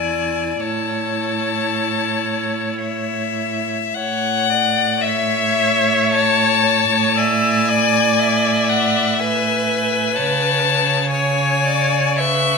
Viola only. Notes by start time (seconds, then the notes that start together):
Already playing: E4
0.61 E4
5.01 C#5
7.18 E5
7.69 D5
9.20 B4
11.13 C#5
12.20 B4